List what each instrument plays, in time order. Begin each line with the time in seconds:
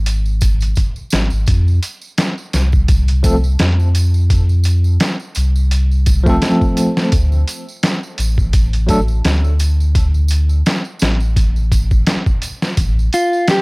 Already playing: sub bass G#1
0.06 closed hi-hat, tambourine
0.26 tambourine
0.41 kick, closed hi-hat, tambourine
0.60 closed hi-hat, tambourine
0.75 kick, closed hi-hat, tambourine
0.96 tambourine
1.10 sub bass G#1, snare, closed hi-hat, tambourine
1.30 sub bass G#1, tambourine
1.46 sub bass F2, kick, closed hi-hat, tambourine
1.68 tambourine
1.83 closed hi-hat, tambourine
2.01 tambourine
2.18 snare, closed hi-hat, tambourine
2.38 tambourine
2.53 sub bass C2, snare, closed hi-hat, tambourine
2.72 kick, tambourine
2.88 kick, closed hi-hat, tambourine
3.08 closed hi-hat, tambourine
3.23 tine electric piano F3 A3 C4 A4, kick, closed hi-hat, tambourine
3.44 tambourine
3.59 sub bass F2, snare, closed hi-hat, tambourine
3.80 tambourine
3.95 closed hi-hat, tambourine
4.14 tambourine
4.30 kick, closed hi-hat, tambourine
4.49 tambourine
4.64 closed hi-hat, tambourine
4.84 tambourine
5.00 snare, closed hi-hat, tambourine
5.20 tambourine
5.35 sub bass C2, closed hi-hat, tambourine
5.56 tambourine
5.71 closed hi-hat, tambourine
5.91 tambourine
6.06 kick, closed hi-hat, tambourine
6.23 tine electric piano F3 A3, kick, tambourine
6.28 tine electric piano C4 A4
6.42 snare, closed hi-hat, tambourine
6.61 kick, tambourine
6.77 closed hi-hat, tambourine
6.97 snare, tambourine
7.12 sub bass D2, kick, closed hi-hat, tambourine
7.32 tambourine
7.48 closed hi-hat, tambourine
7.68 tambourine
7.83 snare, closed hi-hat, tambourine
8.03 tambourine
8.18 sub bass A1, closed hi-hat, tambourine
8.38 kick, tambourine
8.53 kick, closed hi-hat, tambourine
8.73 closed hi-hat, tambourine
8.87 tine electric piano F#3 A3 D4 A4, kick, closed hi-hat, tambourine
9.08 tambourine
9.25 sub bass D2, snare, closed hi-hat, tambourine
9.44 tambourine
9.59 closed hi-hat, tambourine
9.80 tambourine
9.95 kick, closed hi-hat, tambourine
10.14 tambourine
10.28 closed hi-hat, tambourine
10.49 tambourine
10.66 snare, closed hi-hat, tambourine
10.85 tambourine
10.99 sub bass A1, snare, closed hi-hat, tambourine
11.20 tambourine
11.36 kick, closed hi-hat, tambourine
11.56 tambourine
11.72 kick, closed hi-hat, tambourine
11.91 kick, tambourine
12.07 snare, closed hi-hat, tambourine
12.26 kick, tambourine
12.42 closed hi-hat, tambourine
12.62 snare, tambourine
12.77 sub bass A1, kick, closed hi-hat, tambourine
12.99 tambourine
13.13 clean electric guitar F4, closed hi-hat, tambourine
13.33 tambourine
13.48 clean electric guitar G4, snare, closed hi-hat, tambourine